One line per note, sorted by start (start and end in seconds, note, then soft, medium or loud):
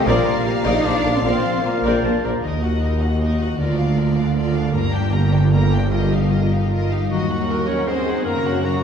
0.00 0.40 G4 medium
0.05 0.13 A#1 medium
0.05 0.15 A#1 medium
0.05 1.23 A#2 medium
0.05 0.65 A#3 medium
0.05 0.79 F4 medium
0.05 0.63 A#4 medium
0.05 0.24 A#4 medium
0.05 0.65 A#4 medium
0.05 0.80 D5 medium
0.05 0.57 D5 medium
0.05 0.24 D5 medium
0.05 2.24 F5 medium
0.05 0.27 A#5 medium
0.25 1.43 F3 soft
0.25 0.46 C6 medium
0.44 1.64 F4 medium
0.44 0.85 G4 medium
0.44 0.84 A#5 soft
0.64 0.72 A#1 medium
0.64 0.73 A#1 medium
0.64 0.84 D#4 medium
0.64 0.83 A#4 medium
0.64 1.03 D5 soft
0.64 0.83 D5 medium
0.64 0.84 D#5 medium
0.64 0.72 D#5 medium
0.82 0.92 A#1 soft
0.82 0.93 A#1 soft
0.82 1.14 D4 medium
0.82 1.61 F4 medium
0.82 1.23 F4 soft
0.82 0.92 A#4 medium
0.82 2.03 A#4 soft
0.82 0.92 C5 soft
0.82 1.61 D5 medium
0.82 1.14 D5 medium
0.82 1.27 D5 soft
0.82 1.14 D5 medium
0.82 1.22 A#5 soft
1.03 1.11 A#1 soft
1.03 1.13 A#1 soft
1.03 1.12 A#4 soft
1.03 1.12 D5 soft
1.14 1.23 C4 medium
1.14 1.23 C5 medium
1.23 1.31 A#1 medium
1.23 1.33 A#1 medium
1.23 2.45 A#2 soft
1.23 1.64 C4 medium
1.23 2.21 F4 soft
1.23 1.43 A#4 medium
1.23 1.63 C5 medium
1.23 1.43 D5 soft
1.23 2.21 F5 soft
1.23 1.61 F5 soft
1.45 2.45 F3 soft
1.62 2.04 A#3 medium
1.62 2.22 F4 medium
1.62 2.46 F4 soft
1.62 2.04 A#4 soft
1.62 2.21 D5 soft
1.66 1.88 F5 medium
1.83 1.91 A#1 medium
1.83 1.93 A#1 medium
1.83 2.02 A#4 medium
1.83 2.02 D5 medium
1.83 2.04 G5 medium
2.03 2.11 A#1 soft
2.03 2.12 A#1 soft
2.03 2.11 A#4 soft
2.03 3.01 A#4 soft
2.03 2.12 C5 soft
2.03 2.24 A5 medium
2.23 2.31 A#1 soft
2.23 2.32 A#1 soft
2.23 2.31 A#4 soft
2.23 2.31 D5 soft
2.23 2.45 D5 soft
2.23 2.43 A#5 medium
2.42 3.55 D#2 soft
2.42 3.56 D#2 soft
2.42 3.62 D#3 soft
2.42 2.61 D#4 soft
2.42 2.61 A#4 soft
2.42 2.62 D#5 soft
2.62 3.78 A#3 soft
2.62 2.82 F#4 soft
2.62 2.82 D#5 soft
2.62 2.83 F#5 soft
2.81 3.02 D#4 soft
2.81 3.19 F#4 soft
2.81 3.01 A#4 soft
2.81 3.01 D#5 soft
3.01 3.21 F#4 soft
3.01 4.16 A#4 soft
3.01 3.21 D#5 soft
3.01 3.21 F#5 soft
3.21 3.39 D#4 soft
3.21 3.61 F#4 soft
3.21 3.39 A#4 soft
3.21 3.39 D#5 soft
3.40 3.61 D#4 soft
3.40 3.60 F#4 soft
3.40 3.60 D#5 soft
3.40 3.60 F#5 soft
3.58 4.71 D2 soft
3.58 4.71 D2 medium
3.58 4.75 D3 soft
3.58 3.78 F4 soft
3.58 3.76 A#4 soft
3.58 3.78 D5 soft
3.77 7.12 A#3 soft
3.77 3.98 D4 soft
3.77 3.97 D5 soft
3.77 3.98 F5 soft
3.96 4.17 F4 soft
3.96 4.35 F4 soft
3.96 4.16 A#4 soft
3.96 4.17 D5 soft
4.15 4.36 D4 soft
4.15 5.31 A#4 soft
4.15 4.35 D5 soft
4.15 4.36 F5 soft
4.35 4.54 F4 soft
4.35 4.76 F4 soft
4.35 4.53 A#4 soft
4.35 4.53 D5 soft
4.53 4.92 D4 soft
4.53 4.74 D4 soft
4.53 4.73 D5 soft
4.53 4.74 F5 soft
4.73 6.91 G1 medium
4.73 5.89 G2 medium
4.73 6.91 G2 medium
4.73 4.91 A#3 soft
4.73 4.91 A#4 medium
4.73 4.93 A#5 medium
4.92 5.12 D4 soft
4.92 5.92 D4 soft
4.92 5.11 G4 soft
4.92 5.12 G5 soft
5.11 5.32 A#3 soft
5.11 5.50 G4 soft
5.11 5.31 A#4 soft
5.11 5.32 A#5 soft
5.30 5.51 D4 soft
5.30 5.50 G4 soft
5.30 6.49 A#4 soft
5.30 5.52 G5 soft
5.50 5.70 A#3 soft
5.50 7.12 G4 soft
5.50 5.69 A#4 soft
5.50 5.70 A#5 soft
5.70 5.92 D3 soft
5.70 5.91 D4 soft
5.70 5.90 G4 soft
5.70 5.92 G5 soft
5.90 7.12 G2 soft
5.90 6.09 F4 soft
5.90 6.09 A#4 soft
5.90 6.10 D#5 soft
6.10 6.31 D#4 soft
6.10 7.29 D#4 soft
6.10 6.31 G4 soft
6.10 6.32 F5 soft
6.30 6.50 F4 soft
6.30 6.69 F4 soft
6.30 6.51 A#4 soft
6.30 6.51 D#5 soft
6.50 6.71 D#4 soft
6.50 6.71 G4 soft
6.50 7.47 A#4 soft
6.50 6.71 F5 soft
6.70 7.11 F4 soft
6.70 6.89 F4 soft
6.70 6.89 A#4 soft
6.70 6.90 D#5 soft
6.90 7.12 G3 soft
6.90 7.10 D#4 soft
6.90 7.10 G4 soft
6.90 7.11 F5 soft
7.09 8.22 D#2 medium
7.09 8.28 D#3 soft
7.09 7.64 F#3 medium
7.09 7.68 F#4 medium
7.09 7.29 F#4 soft
7.09 7.29 A#4 soft
7.09 7.28 D#5 soft
7.20 8.83 A#3 soft
7.30 8.15 D#4 soft
7.30 7.49 D#4 soft
7.30 7.48 F#4 soft
7.30 7.49 F#5 soft
7.39 8.53 F#4 soft
7.49 7.68 F#4 soft
7.49 8.06 A#4 soft
7.49 7.85 A#4 medium
7.49 7.69 A#4 soft
7.49 7.69 D#5 soft
7.58 7.97 D#5 soft
7.67 7.87 C#4 medium
7.67 7.88 D#4 soft
7.67 7.88 F#4 soft
7.67 7.89 C#5 medium
7.67 7.87 F#5 soft
7.67 7.88 F#5 soft
7.78 8.83 A#5 soft
7.86 8.26 C4 medium
7.86 8.26 C4 soft
7.86 8.07 F#4 soft
7.86 8.27 G#4 medium
7.86 8.07 A#4 soft
7.86 8.24 C5 medium
7.86 8.06 D#5 soft
7.86 8.82 F#5 soft
8.07 8.27 D#4 soft
8.07 8.27 F#4 soft
8.07 8.63 A#4 soft
8.07 8.27 F#5 soft
8.16 8.28 D#4 soft
8.25 8.83 F#2 soft
8.25 8.64 A#3 medium
8.25 8.65 A#3 medium
8.25 8.45 A#3 soft
8.25 8.83 F#4 medium
8.25 8.64 A#4 medium
8.25 8.45 A#4 soft
8.25 8.45 A#5 medium
8.35 8.83 C#3 soft
8.45 8.83 C#4 soft
8.45 8.65 C#4 soft
8.45 8.65 C#5 soft
8.45 8.65 F#5 soft
8.54 8.83 F#4 soft
8.63 8.83 F#3 medium
8.63 8.83 F#3 soft
8.63 8.83 A#3 soft
8.63 8.83 F#4 medium
8.63 8.83 A#4 soft
8.63 8.83 A#5 soft
8.74 8.83 C#5 soft